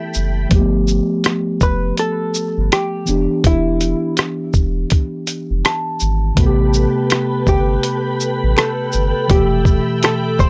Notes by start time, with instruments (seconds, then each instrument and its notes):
Already playing: tine electric piano E3 A3 B3 G4, hollow-body jazz guitar E4, string machine A4 E5 G5 B5
0.14 analog synth bass F#1, shaker
0.49 analog synth bass G1, tine electric piano F3 A3 A#3, kick, closed hi-hat
0.55 tine electric piano G4
0.60 tine electric piano B3
0.88 shaker
1.24 cross-stick, closed hi-hat
1.61 analog synth bass F1, hollow-body jazz guitar B4, kick, shaker
1.97 hollow-body jazz guitar A4, closed hi-hat
2.34 shaker
2.58 analog synth bass G1
2.72 hollow-body jazz guitar G4, cross-stick, closed hi-hat
3.06 analog synth bass E1, tine electric piano E3 B3 D4, shaker
3.11 tine electric piano G4
3.44 analog synth bass E1, hollow-body jazz guitar E4, kick, closed hi-hat
3.81 closed hi-hat, shaker
4.17 cross-stick, closed hi-hat
4.54 analog synth bass E1, kick, shaker
4.90 kick, closed hi-hat
5.27 closed hi-hat, shaker
5.51 analog synth bass F1
5.65 tine electric piano A5, cross-stick, closed hi-hat
6.00 analog synth bass G#1, shaker
6.35 analog synth bass A1, tine electric piano C3 A3 B3, string machine A4 B4 G5 B5, kick, closed hi-hat
6.40 tine electric piano F#4
6.46 tine electric piano G4
6.74 shaker
7.10 finger snap, cross-stick, closed hi-hat
7.47 analog synth bass G1, hollow-body jazz guitar G4, kick, shaker
7.83 closed hi-hat
8.20 shaker
8.44 analog synth bass A1
8.57 hollow-body jazz guitar A4, finger snap, cross-stick, closed hi-hat
8.92 analog synth bass G1, shaker
9.28 analog synth bass F1, tine electric piano B2 E3 A3, hollow-body jazz guitar G4, string machine E5, kick, closed hi-hat
9.33 tine electric piano G4
9.65 kick, shaker
10.03 hollow-body jazz guitar A4, finger snap, cross-stick, closed hi-hat
10.39 analog synth bass E1, hollow-body jazz guitar C5, kick, shaker